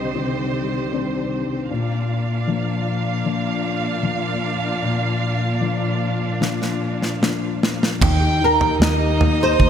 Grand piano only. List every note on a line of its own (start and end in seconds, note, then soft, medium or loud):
0.00 1.66 C2 soft
0.00 0.13 D3 soft
0.00 0.12 D#3 soft
0.00 0.13 C4 soft
0.15 0.90 D3 soft
0.15 0.90 D#3 soft
0.15 0.90 C4 soft
0.93 1.68 D#3 soft
0.93 1.68 C4 soft
0.93 1.68 D4 soft
1.71 4.79 A#2 medium
2.47 3.23 F3 soft
2.47 3.23 A#3 soft
2.47 3.23 D4 soft
3.25 4.01 F3 soft
3.25 4.01 A#3 soft
3.25 4.01 D4 soft
4.03 4.80 F3 soft
4.03 4.80 A#3 soft
4.03 4.80 D4 soft
4.82 7.97 A#2 medium
5.60 6.38 F3 soft
5.60 6.38 A#3 soft
5.60 6.38 D4 soft
6.41 7.19 F3 soft
6.41 7.18 A#3 soft
6.41 7.19 D4 soft
7.21 7.99 F3 soft
7.21 7.99 A#3 soft
7.21 7.99 D4 soft
8.01 8.39 D#3 medium
8.20 8.59 G4 medium
8.41 8.79 D#3 medium
8.61 8.98 G4 soft
8.81 9.70 D#3 medium
8.99 9.38 G4 medium
9.20 9.58 A#3 medium
9.40 9.70 G4 medium
9.59 9.70 A#3 medium